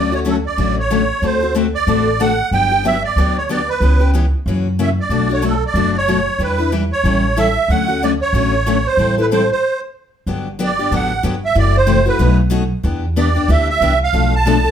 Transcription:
Already playing: D2 D3 F#3 A3 C#4 F#4 D5
0.12 A3 C#4 F#4 C#5
0.25 D3 F#3 A3 C#4 F#4 A4
0.46 D5
0.57 A1 D3 F#3 A3 C#4 F#4
0.79 C#5
0.90 D3 F#3 A3 C#4 F#4
1.22 D2 D3 A3 C4 F#4 A4 C5
1.41 C4 F#4 A4
1.55 D3 A3 C4 F#4 A4
1.74 D5
1.87 A1 D3 A3 C4 F#4 A4
2.20 D3 A3 C4 F#4 A4 F#5
2.51 G1 D3 F#3 B3 D4 G4 G5
2.72 B3 D4 G4
2.84 D3 F#3 B3 D4 G4 E5
3.04 D5
3.16 D2 D3 F#3 B3 D4 G4
3.37 C#5
3.49 D3 F#3 B3 D4 G4 D5
3.69 B4
3.80 C#2 C#3 E3 B3 C#4 G4
4.00 B3 C#4 G4
4.14 C#3 E3 B3 C#4 G4
4.46 F#2 C#3 E3 A#3 C#4 F#4
4.79 C#3 E3 A#3 C#4 F#4 E5
5.00 D5
5.09 B1 B2 F#3 A3 D4 F#4
5.29 A3 D4 F#4 C#5
5.42 B2 F#3 A3 D4 F#4
5.46 A4
5.66 D5
5.74 F#1 B2 F#3 A3 D4 F#4
5.97 C#5
6.08 B2 F#3 A3 D4 F#4
6.39 E2 E3 G3 D4 E4 B4
6.43 B4
6.58 D4 E4 B4
6.72 E3 G3 D4 E4 B4
6.92 C#5
7.04 A1 E3 G3 C#4 E4 A4
7.37 E3 G3 C#4 E4 A4 E5
7.68 D2 D3 F#3 A3 C#4 F#4 F#5
7.88 A3 C#4 F#4
8.03 D3 F#3 A3 C#4 F#4 D5
8.21 C#5
8.33 A1 D3 F#3 A3 C#4 F#4
8.66 D3 F#3 A3 C#4 F#4
8.86 C5
8.97 A1 E3 G3 C4 E4 A4
9.18 C4 E4 A4 B4
9.31 E3 G3 C4 E4 A4 C5
9.52 C5
10.26 G1 D3 F#3 B3 D4 G4
10.59 D3 F#3 B3 D4 G4
10.64 D5
10.79 B3 D4 G4
10.91 A1 D3 F#3 B3 D4 G4 F#5
11.23 G1 D3 F#3 B3 D4 G4
11.45 E5
11.55 F#1 C3 E3 A3 E4 F#4 D5
11.77 C5
11.87 C3 E3 A3 E4 F#4
12.06 A3 E4 F#4 B4
12.19 B1 B2 F#3 A3 D#4 F#4
12.50 B2 F#3 A3 D#4 F#4
12.83 E2 E3 B3 D4 G4
13.16 E3 B3 D4 G4 D5
13.35 B3 D4 G4
13.48 D2 E3 B3 D4 G4 E5
13.70 E5
13.81 C2 E3 B3 D4 G4
14.03 F5
14.13 B1 B2 F3 A3 D4 A4
14.35 A5
14.46 B2 F3 A3 D4 A4
14.64 A3 D4 A4

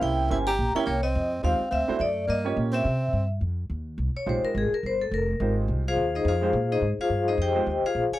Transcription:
Already playing: A#3 C#4 E4 G4 C5
0.01 C2 E4 G5
0.30 G1 A#3 C#4 E4 G4 C5 G#5
0.47 G4 A#5
0.59 A#1
0.75 A#3 C#4 E4 G4 C#5 G5, muted upright bass stroke
0.86 C2 A#3 C#5
1.03 C4 D#5
1.15 F2
1.43 D#2 G#3 C4 D#4 F4 G4 C5 F5
1.60 muted upright bass stroke
1.71 D2 C4 E5
1.88 A3 D4 E4 F#4 C5, muted upright bass stroke
1.99 F#2 A3 D5
2.27 G2 A#3 D#5
2.44 A#3 C#4 F4 G4 C#5
2.57 A#2
2.72 C4 E5
2.85 C3
3.13 G2
3.41 F2
3.70 D#2
3.98 C2
4.15 C#5, muted upright bass stroke
4.26 A#1 G#3 D#4 F4 G4 C5
4.43 A#4, muted upright bass stroke
4.55 G#1 G#4
4.71 A#4, muted upright bass stroke
4.83 G1 C5
5.01 A4
5.11 F1 A#4
5.40 G#1 G#3 D#4 F4 G4 C5
5.68 C2
5.88 F4 G#4 C5 F5
5.96 D#2
6.15 D#4 G#4 C5 D#5
6.25 F2 F4 G#4 C5 F5
6.41 G#3 D#4 F4 G4 C5
6.53 A#2
6.72 D#4 G#4 C5 D#5
6.82 G#2
6.98 F4 G#4 C5 F5, muted upright bass stroke
7.09 G2
7.28 D#4 G#4 C5 D#5
7.38 F2
7.42 G4 C5 D#5 G5
7.55 G#3 D#4 F4 G4 C5
7.66 D#2
7.83 F4 G#4 C5 F5, muted upright bass stroke
7.95 A#1
8.12 G#4 C#5 F5 G#5, muted upright bass stroke

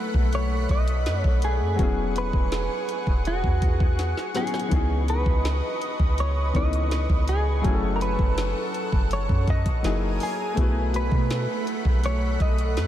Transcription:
Already playing: F#3 A3 B3 E4 B4 F#5 B5
0.14 B1, kick
0.33 C#5, closed hi-hat
0.69 B1 D#5, kick, closed hi-hat
0.88 closed hi-hat
1.06 F#2, snare, closed hi-hat
1.22 B1 C#5, kick
1.42 G#4, closed hi-hat
1.61 F#2
1.76 E1 F#3 B3 C#4 C#6, kick, closed hi-hat
1.80 E4 G#4 F#5
2.16 B4, closed hi-hat
2.33 E1, kick
2.52 G#4, snare, closed hi-hat
2.89 closed hi-hat
3.07 E1, kick
3.25 F#4, closed hi-hat
3.44 E2, kick
3.62 kick, closed hi-hat
3.80 kick
3.99 snare, closed hi-hat
4.17 snare
4.34 F#3 B3 C#4 E4 G#4, snare, closed hi-hat, open hi-hat
4.47 closed hi-hat
4.54 snare
4.59 closed hi-hat
4.68 C#2 E3 B3 C#4 B4 D#5, kick, closed hi-hat
4.74 D#4 G#4
5.08 B4, closed hi-hat
5.26 C#2, kick
5.45 snare, closed hi-hat
5.82 closed hi-hat
6.00 C#2, kick
6.18 C#5, closed hi-hat
6.53 C#2 E3 B3 C#4 D#4 A4 D#5, kick, closed hi-hat
6.63 B4
6.73 closed hi-hat
6.91 snare, closed hi-hat
7.10 C#2, kick
7.28 G#4, closed hi-hat
7.61 F#1 F#3 A3 C#4 A4 F#5, kick, closed hi-hat
7.67 E4 G#4
7.75 A4
7.96 A#4
8.01 B4, closed hi-hat
8.19 F#1, kick
8.38 snare, closed hi-hat
8.74 closed hi-hat
8.92 F#1, kick
9.11 C#5, closed hi-hat
9.29 F#2, kick
9.47 D#5, kick, closed hi-hat
9.66 A1, kick, closed hi-hat
9.83 F#1 F#3 A#3 D#4 E4 G#4 A#4 G#5 D#6, snare, closed hi-hat
10.20 G#4, open hi-hat
10.54 B1 A3 B3 E4 F#5 B5, kick, closed hi-hat
10.60 F#4 B4
10.93 F#4 B4, closed hi-hat
11.12 B2, kick
11.17 A3
11.30 snare, closed hi-hat
11.67 closed hi-hat
11.85 B1, kick
12.04 C#5, closed hi-hat
12.40 B1 D#5, kick, closed hi-hat
12.59 closed hi-hat
12.76 F#2, snare, closed hi-hat

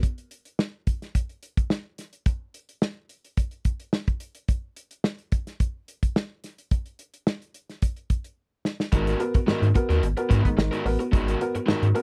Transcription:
0.03 kick, closed hi-hat
0.18 closed hi-hat
0.31 closed hi-hat
0.45 closed hi-hat
0.59 snare
0.87 kick, closed hi-hat
1.02 snare, closed hi-hat
1.15 kick, closed hi-hat
1.29 closed hi-hat
1.43 closed hi-hat
1.57 kick, closed hi-hat
1.70 snare
1.98 snare, closed hi-hat
2.13 closed hi-hat
2.26 kick, closed hi-hat
2.54 closed hi-hat
2.69 closed hi-hat
2.82 snare
3.09 closed hi-hat
3.25 closed hi-hat
3.37 kick, closed hi-hat
3.51 closed hi-hat
3.65 kick, closed hi-hat
3.80 closed hi-hat
3.93 snare
4.07 kick, closed hi-hat
4.20 closed hi-hat
4.35 closed hi-hat
4.48 kick, closed hi-hat
4.76 closed hi-hat
4.91 closed hi-hat
5.04 snare
5.18 closed hi-hat
5.32 kick, closed hi-hat
5.47 snare, closed hi-hat
5.60 kick, closed hi-hat
5.88 closed hi-hat
6.03 kick, closed hi-hat
6.16 snare
6.44 snare, closed hi-hat
6.58 closed hi-hat
6.71 kick, closed hi-hat
6.86 closed hi-hat
6.99 closed hi-hat
7.14 closed hi-hat
7.27 snare
7.42 closed hi-hat
7.54 closed hi-hat
7.70 snare, closed hi-hat
7.82 kick, closed hi-hat
7.96 closed hi-hat
8.10 kick, closed hi-hat
8.24 closed hi-hat
8.65 snare
8.80 snare
8.92 G#1 G#2 D#3 B3 F#4 A#4, kick, closed hi-hat
9.07 F#4 A#4, closed hi-hat
9.20 B3 F#4 A#4, closed hi-hat
9.34 G#2, muted overdriven electric guitar stroke, kick, closed hi-hat
9.47 G#2 D#3 B3 F#4 A#4, snare
9.62 G#2, closed hi-hat
9.75 B3 F#4 A#4, muted overdriven electric guitar stroke, kick, closed hi-hat
9.89 D#2 B3 F#4 A#4, snare, closed hi-hat
10.03 G#1, closed hi-hat
10.17 B3 F#4 A#4, muted overdriven electric guitar stroke, closed hi-hat
10.29 G#2 B3 F#4 A#4, kick, closed hi-hat
10.43 G#2 D#3, muted overdriven electric guitar stroke, kick, closed hi-hat
10.57 G#1 G#2 D#3, muted overdriven electric guitar stroke, snare
10.71 B3 F#4 A#4, closed hi-hat
10.85 A1 B3 F#4 A#4, muted overdriven electric guitar stroke, snare, open hi-hat
10.99 F#4 A#4, muted overdriven electric guitar stroke, closed hi-hat
11.12 G#1 G#2 D#3 B3 F#4 A#4, kick, closed hi-hat
11.28 F#4 A#4, closed hi-hat
11.41 B3 F#4 A#4, closed hi-hat
11.55 G#2, muted overdriven electric guitar stroke, closed hi-hat
11.66 G#2 D#3 B3 F#4 A#4, snare
11.83 G#2, closed hi-hat
11.94 B3 F#4 A#4, muted overdriven electric guitar stroke, closed hi-hat

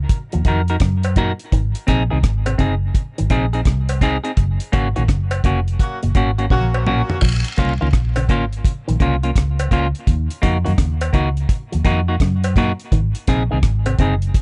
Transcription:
0.09 kick, closed hi-hat
0.32 D#2 F3, closed hi-hat
0.45 F2 D#3 D#4 F#4 A#4, kick, closed hi-hat
0.68 D#4 F#4 A#4, closed hi-hat
0.80 F#2 C#3, kick, cross-stick, closed hi-hat
1.03 closed hi-hat, cowbell
1.16 A#2 D#4 F#4 A#4, kick, closed hi-hat
1.39 closed hi-hat
1.52 G#1 D#3, kick, closed hi-hat
1.75 closed hi-hat
1.87 A#1 C3 C4 D#4 G#4, kick, cross-stick, closed hi-hat
2.10 C2 D#3 C4 D#4 G#4
2.23 G#1, kick, cross-stick, closed hi-hat
2.46 C3, closed hi-hat, cowbell
2.58 F#1 C3 C4 D#4 G#4, kick, closed hi-hat
2.95 kick, closed hi-hat
3.18 G#1 D#3, closed hi-hat
3.30 A#1 C3 C4 D#4 G#4, kick, closed hi-hat
3.53 C4 D#4 G#4, closed hi-hat
3.65 C2, kick, cross-stick, closed hi-hat
3.89 closed hi-hat, cowbell
4.01 C4 D#4 G#4, kick, closed hi-hat
4.24 C4 D#4 G#4, closed hi-hat
4.37 F#1, kick, closed hi-hat
4.60 closed hi-hat
4.72 G#1 C#3 A#3 C#4 F#4, kick, closed hi-hat
4.96 A#1 D#3 A#3 C#4 F#4, closed hi-hat
5.08 F#1 C#3, kick, cross-stick, closed hi-hat
5.31 closed hi-hat, cowbell
5.44 F1 C#3 A#3 C#4 F#4, kick, closed hi-hat
5.68 closed hi-hat
5.79 F#3 A#3 C#4 F#4, kick, closed hi-hat
6.03 F#1 A#2, closed hi-hat
6.15 G#1 A#2 A#3 C#4 F#4, kick, closed hi-hat
6.38 A#3 C#4 F#4, closed hi-hat
6.50 A#1 C#3 F#3 A#3 C#4 F#4, kick, high tom
6.74 cowbell
6.87 A#2 A#3 C#4 F#4, mid tom
7.10 floor tom
7.21 A#1 F3, kick, crash, vibraslap
7.45 closed hi-hat
7.57 C2 C#3 A#3 C#4 F4, kick, cross-stick, closed hi-hat
7.81 C#2 D#3 A#3 C#4 F4
7.93 A#1, kick, cross-stick, closed hi-hat
8.16 C#3, closed hi-hat, cowbell
8.29 G#1 C#3 A#3 C#4 F4, kick, closed hi-hat
8.53 closed hi-hat
8.65 kick, closed hi-hat
8.88 A#1 D#3, closed hi-hat
9.00 C2 C#3 A#3 C#4 F4, kick, closed hi-hat
9.23 A#3 C#4 F4, closed hi-hat
9.36 C#2, kick, cross-stick, closed hi-hat
9.59 closed hi-hat, cowbell
9.71 C#2 A#3 C#4 F4, kick, closed hi-hat
9.95 closed hi-hat
10.07 D#2, kick, closed hi-hat
10.30 closed hi-hat
10.42 F2 C#3 A#3 D#4 F#4, kick, closed hi-hat
10.65 F#2 D#3 A#3 D#4 F#4, closed hi-hat
10.78 D#2 C#3, kick, cross-stick, closed hi-hat
11.01 closed hi-hat, cowbell
11.13 C#2 D#3 A#3 D#4 F#4, kick, closed hi-hat
11.37 closed hi-hat
11.49 kick, closed hi-hat
11.72 D#2 F3, closed hi-hat
11.85 F2 D#3 A#3 D#4 F#4, kick, closed hi-hat
12.08 A#3 D#4 F#4
12.20 F#2 C#3, kick, cross-stick, closed hi-hat
12.44 closed hi-hat, cowbell
12.56 A#2 A#3 D#4 F#4, kick, closed hi-hat
12.80 closed hi-hat
12.92 G#1 D#3, kick, closed hi-hat
13.15 closed hi-hat
13.27 A#1 C3 C4 D#4 G#4, kick, cross-stick, closed hi-hat
13.51 C2 D#3 C4 D#4 G#4
13.63 G#1, kick, cross-stick, closed hi-hat
13.86 C3, closed hi-hat, cowbell
13.99 F#1 C3 C4 D#4 G#4, kick, closed hi-hat
14.22 closed hi-hat
14.34 kick, closed hi-hat

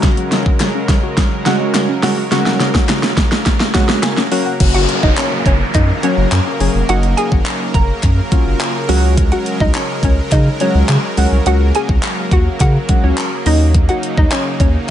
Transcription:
Already playing: C#3 F#3 G#3 C#4 F#4 A#4
0.03 C#3, kick, snare, closed hi-hat
0.17 F#3, closed hi-hat
0.32 C#3, snare, closed hi-hat
0.46 G#3, kick
0.60 C#3, snare, clap, closed hi-hat
0.75 C#4
0.89 C#3, kick, snare, closed hi-hat
1.03 F#4
1.17 kick, snare, closed hi-hat
1.32 F#3
1.46 C#3 G#3 C#4 F#4, snare, closed hi-hat
1.60 G#3
1.74 C#3, snare, clap, closed hi-hat
1.89 C#4
2.03 C#3 G#3 A#3 C#4 F#4, snare, open hi-hat
2.17 F#4
2.31 C#3 G#3 C#4 F#4, snare, closed hi-hat
2.46 F#3, snare
2.60 C#3, snare, closed hi-hat
2.74 G#3, kick, snare
2.89 C#3, snare, clap, closed hi-hat
3.03 C#4, snare
3.17 C#3, kick, snare, closed hi-hat
3.32 F#4, snare
3.46 kick, snare, closed hi-hat
3.60 F#3, snare
3.74 C#3 G#3 C#4 F#4, kick, snare, closed hi-hat
3.89 G#3, snare
4.03 C#3 G#5, snare, clap, closed hi-hat
4.17 C#4, snare
4.31 F#3 A#3 C#4 F#4 F#5, open hi-hat
4.46 F#5
4.60 F#1 C#3 F#3 A#3 C#4 F#4 A#4, kick, closed hi-hat, crash, downlifter
4.74 F#4 F#5, closed hi-hat
4.89 closed hi-hat
5.03 F#1 D#4 D#5, kick
5.17 C#4 C#5, clap, closed hi-hat
5.46 F#1 C#4 C#5, kick, closed hi-hat
5.74 F#2 D#4 D#5, kick, clap, closed hi-hat
6.03 F#3 A#3 C#4 F#4 C#5, closed hi-hat
6.17 F#1
6.32 F#2, clap, closed hi-hat
6.60 F#1 F#3 A#3 C#4 G#4, open hi-hat
6.75 F1
6.89 F#1 F#3 A#3 C#4 D#4 F#4 F#5, closed hi-hat
7.03 closed hi-hat
7.17 G#4 G#5, closed hi-hat
7.32 G#1, kick
7.46 clap, closed hi-hat
7.74 F#1 A#4 A#5, kick, closed hi-hat
8.03 F#2, kick, clap, closed hi-hat
8.32 F#3 A#3 C#4 F4, kick, closed hi-hat
8.46 F#1
8.60 clap, closed hi-hat
8.89 C#2 F#3 G#3 C#4 F#4, open hi-hat
9.17 kick, closed hi-hat
9.32 F#4 F#5, closed hi-hat
9.46 closed hi-hat
9.60 C#2 D#4 D#5, kick
9.74 C#4 C#5, clap, closed hi-hat
10.03 C#2 C#4 C#5, kick, closed hi-hat
10.32 C#3 D#4 D#5, kick, clap, closed hi-hat
10.60 F#3 G#3 C#4 F#4 C#5, closed hi-hat
10.75 C#2
10.89 C#3, clap, closed hi-hat
11.17 C#2 F#3 G#3 A#3 C#4 F#4, open hi-hat
11.32 C2
11.46 C#2 F#3 G#3 C#4 F#4 F#5, closed hi-hat
11.75 G#4 G#5, closed hi-hat
11.89 C#2, kick
12.03 clap, closed hi-hat
12.31 D#2 F#4 F#5, kick, closed hi-hat
12.60 C#3 F#4 F#5, kick, clap, closed hi-hat
12.89 F#3 G#3 C#4 F#4, kick, closed hi-hat
13.03 C#2 C#4 C#5
13.17 clap, closed hi-hat
13.46 D#2 C#3 F#3 A#3 C#4 D#4 D#5, open hi-hat
13.74 kick, closed hi-hat
13.89 F#4 F#5, closed hi-hat
14.03 closed hi-hat
14.18 D#2 D#4 D#5, kick
14.31 C#4 C#5, clap, closed hi-hat
14.60 D#2 C#4 C#5, kick, closed hi-hat

